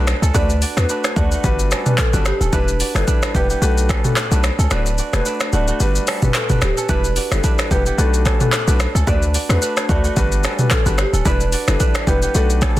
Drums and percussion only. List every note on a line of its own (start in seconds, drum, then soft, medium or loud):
0.07 finger snap medium
0.07 cross-stick loud
0.07 shaker medium
0.23 shaker medium
0.35 kick loud
0.35 shaker medium
0.50 shaker soft
0.62 open hi-hat medium
0.62 shaker medium
0.77 finger snap medium
0.77 cross-stick medium
0.77 shaker medium
0.89 shaker medium
1.04 finger snap medium
1.04 cross-stick loud
1.04 shaker soft
1.16 kick loud
1.16 shaker medium
1.32 shaker medium
1.44 kick medium
1.44 shaker medium
1.59 shaker medium
1.71 finger snap medium
1.71 cross-stick medium
1.71 shaker medium
1.86 mid tom medium
1.86 shaker medium
1.98 finger snap medium
1.98 kick loud
1.98 cross-stick loud
1.98 clap loud
1.98 shaker medium
2.13 shaker medium
2.25 finger snap medium
2.25 cross-stick loud
2.25 shaker medium
2.41 shaker medium
2.53 kick loud
2.53 shaker medium
2.68 shaker medium
2.80 open hi-hat medium
2.80 shaker medium
2.96 finger snap medium
2.96 cross-stick medium
2.96 shaker medium
3.08 kick loud
3.08 shaker medium
3.22 finger snap medium
3.22 cross-stick loud
3.22 shaker soft
3.35 kick loud
3.35 shaker medium
3.50 shaker medium
3.62 shaker medium
3.78 shaker medium
3.89 finger snap medium
3.89 kick loud
3.89 cross-stick medium
3.89 shaker medium
4.04 mid tom medium
4.04 shaker medium
4.16 finger snap medium
4.16 cross-stick loud
4.16 clap loud
4.16 shaker medium
4.32 shaker medium
4.44 finger snap medium
4.44 cross-stick loud
4.44 shaker medium
4.59 shaker medium
4.71 finger snap medium
4.71 cross-stick loud
4.71 shaker medium
4.86 shaker soft
4.98 shaker medium
5.13 finger snap medium
5.13 cross-stick medium
5.13 shaker medium
5.25 shaker medium
5.40 finger snap medium
5.40 cross-stick loud
5.40 shaker soft
5.53 shaker medium
5.68 shaker medium
5.80 shaker medium
5.95 shaker medium
6.07 finger snap medium
6.07 cross-stick medium
6.07 open hi-hat medium
6.07 shaker medium
6.22 mid tom medium
6.22 shaker medium
6.34 finger snap medium
6.34 cross-stick loud
6.34 clap loud
6.34 shaker medium
6.49 mid tom loud
6.49 shaker medium
6.62 finger snap medium
6.62 cross-stick loud
6.62 shaker medium
6.77 shaker medium
6.89 kick loud
6.89 shaker medium
7.04 shaker medium
7.16 open hi-hat medium
7.16 shaker medium
7.32 finger snap medium
7.32 cross-stick medium
7.32 shaker medium
7.44 kick loud
7.44 shaker medium
7.59 finger snap medium
7.59 cross-stick loud
7.59 shaker soft
7.71 kick medium
7.71 shaker medium
7.86 shaker soft
7.99 shaker medium
8.14 shaker medium
8.26 finger snap medium
8.26 kick loud
8.26 cross-stick medium
8.26 shaker medium
8.40 mid tom medium
8.40 shaker medium
8.52 finger snap medium
8.52 cross-stick loud
8.52 clap loud
8.52 shaker medium
8.68 shaker medium
8.80 finger snap medium
8.80 cross-stick loud
8.80 shaker medium
8.96 shaker medium
9.07 kick loud
9.07 shaker medium
9.22 shaker soft
9.34 open hi-hat medium
9.34 shaker medium
9.50 finger snap medium
9.50 cross-stick medium
9.50 shaker medium
9.62 shaker medium
9.77 finger snap medium
9.77 cross-stick loud
9.77 shaker soft
9.89 kick medium
9.89 shaker medium
10.04 shaker medium
10.17 kick medium
10.17 shaker medium
10.32 shaker medium
10.44 finger snap medium
10.44 cross-stick medium
10.44 shaker medium
10.59 mid tom medium
10.59 shaker medium
10.71 finger snap medium
10.71 kick loud
10.71 cross-stick loud
10.71 clap loud
10.71 shaker medium
10.86 shaker medium
10.98 finger snap medium
10.98 cross-stick loud
10.98 shaker medium
11.14 shaker medium
11.25 kick loud
11.25 shaker medium
11.40 shaker soft
11.52 open hi-hat medium
11.52 shaker medium
11.68 finger snap medium
11.68 cross-stick medium
11.68 shaker medium
11.80 kick loud
11.80 shaker medium
11.95 finger snap medium
11.95 cross-stick loud
11.95 shaker soft
12.07 kick medium
12.07 shaker medium
12.22 shaker medium
12.35 shaker medium
12.50 shaker medium
12.62 finger snap medium
12.62 kick loud
12.62 cross-stick medium
12.62 shaker medium
12.77 mid tom medium
12.77 shaker medium